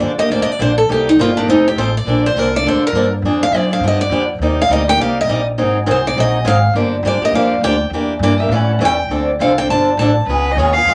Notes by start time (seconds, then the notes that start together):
0.00 D#2 D3 F3 A#3 D4 G4
0.16 A#3 D4 G4 D#5, muted upright bass stroke
0.29 D2 D3 F3 A#3 D4 G4 D5
0.42 D#5
0.48 D5, muted upright bass stroke
0.59 A#1 D3 F3 A#3 D4 G4 C5
0.78 A4
0.89 C2 C3 G3 A#3 D#4 G4
1.09 D#4
1.17 G1 C3 G3 A#3 D#4 G4
1.21 F4
1.37 A#3 D4 D#4 G4
1.46 F1 F3 C4 D#4 A4
1.68 G4
1.76 A1 F3 C4 D#4 A4 C5
1.97 D5
2.05 A#1 D3 F3 A#3 D4 A4
2.26 C5
2.34 C2 D3 F3 A#3 D4 A4
2.39 A#4
2.54 D4 A4 D5
2.63 D2 D3 F3 A#3 D4 A4
2.68 C5
2.87 A#4
2.92 G2 D3 F3 A#3 D4 A4
3.22 F2 D3 F3 C4 D4 G#4
3.43 F5
3.51 F#2 D3 F3 C4 D4 G#4
3.56 D5
3.71 C4 D4 G#4 F5
3.80 G2 D3 F3 B3 D4 G4
3.88 D#5
4.01 D5
4.09 F2 D3 F3 B3 D4 G4
4.39 D#2 C3 G3 A#3 D#4 G4
4.61 F5
4.68 D2 C3 G3 A#3 D#4 G4
4.73 D#5
4.88 A#3 D#4 G4 G5
4.97 C2 C3 G3 A#3 D#4 G4 F5
5.21 D#5
5.27 A#1 C3 G3 A#3 D#4 G4
5.58 G#1 D#3 F#3 C4 D#4 G#4
5.86 C2 D#3 F#3 C4 D#4 G#4
5.91 C5
6.05 C4 D#4 G#4 D5
6.16 A#1 D#3 F#3 C4 D#4 G#4 D#5
6.45 G#1 D#3 F#3 C4 D#4 G#4 F5
6.73 G1 D3 F3 A#3 D4 G4
7.03 G2 D3 F3 A#3 D4 G4
7.07 D5
7.20 A#3 D4 G4, muted upright bass stroke
7.25 D#5
7.31 F2 D3 F3 D4
7.35 A#3 G4 F5
7.61 D2 D3 F3 A#3 D4 G4 G5
7.90 E2 E3
7.94 A#3 D4 G4
8.19 G2 E3 A#3 G4
8.23 D4 D5
8.40 A#3 D4 G4 E5
8.48 A2 E3 G3 C#4 E4 A4
8.54 F#5
8.79 E2 E3 G3 C#4 E4 A4
8.85 G5
9.09 D2 D3 F3 C4 D4 A4
9.39 C2 D3 F3 C4 D4 A4 F5
9.58 C4 D4 A4 G5
9.68 G1 D3 F3 C4 D4 A4 A5
9.97 A1 D3 F3 C4 A5
10.01 D4 A4
10.26 C#2 C#3 G#3 B3 F4 B4
10.30 G#4
10.52 D#2 D#5
10.57 C#3 G#3 B3 F4 G#4 C#5
10.73 G#4 F5
10.77 B3 F4
10.85 F2 C#3 G#3 B3 F4 G#4